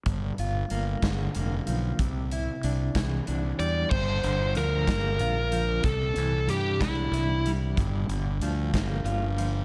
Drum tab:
CC |------|------|x-----|------|
HH |xxxxxx|xxxxxx|-xxxxx|xxxxxx|
SD |---o--|---o--|---o--|---o--|
BD |o--o--|o--o--|o--o--|o--o--|

CC |------|
HH |xxxxxx|
SD |---o--|
BD |o--o--|